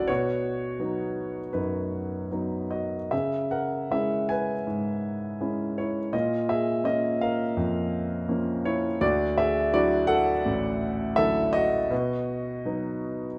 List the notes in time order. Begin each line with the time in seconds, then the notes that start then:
Already playing: A1 F#3 C#4 D4 E4 F#4 A4 B4 C#5 D5
0.08 B2 F#4 C#5
0.80 F#3 B3 D#4
1.53 F#2 D#4 B4
2.31 F#3 B3 D#4
2.71 F#4 D#5
3.11 C#3 G#4 E5
3.51 A#4 F#5
3.91 G#3 C#4 E4 G#4 E5
4.29 B4 G#5
4.67 G#2
5.41 G#3 C#4 E4
5.78 E4 C#5
6.13 A#2 F4 D#5
6.49 G#4 E5
6.84 A#3 C#4 F4 D#5
7.21 A#4 F5
7.57 F2
8.28 F3 A#3 C#4
8.65 E4 C#5
9.01 D2 F#4 D5
9.38 G#4 E5
9.73 F#3 D4 E4 F#4 D5
10.07 A4 F#5
10.46 A1
11.16 D3 F#3 E4 A4 E5
11.53 F#4 D#5
11.91 B2
12.65 F#3 B3 D#4